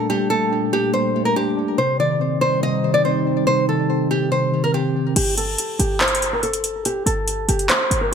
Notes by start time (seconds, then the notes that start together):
Already playing: A#2 G3 A3 D4 A4 G5
0.09 G3 G4
0.30 A3 A4
0.52 D4
0.73 G4
0.94 G3 C5
1.15 A3
1.25 A#4
1.36 D4 G4
1.57 D4
1.78 C3 G3 D#4 C5
1.99 D#3 D5
2.20 C4
2.41 C5
2.62 C3 D#5
2.84 D#3
2.94 D5
3.05 C4 C5
3.26 C4
3.47 C3 C5
3.69 D#3 A4
3.89 C4
4.11 G4
4.32 C3 C5
4.52 D#3
4.64 A#4
4.74 C4 G4
4.95 C4
5.16 G1 G4, closed hi-hat, crash
5.37 A4, closed hi-hat
5.58 closed hi-hat
5.79 G1 G4, closed hi-hat
6.01 C5, clap, closed hi-hat
6.08 closed hi-hat
6.15 closed hi-hat
6.22 closed hi-hat
6.33 A#4
6.43 A4, closed hi-hat
6.53 closed hi-hat
6.64 closed hi-hat
6.85 G4, closed hi-hat
7.06 G1 A4, closed hi-hat
7.28 closed hi-hat
7.49 F#1 G4, closed hi-hat
7.59 closed hi-hat
7.69 C5, clap, closed hi-hat
7.91 G1, closed hi-hat
8.01 A#4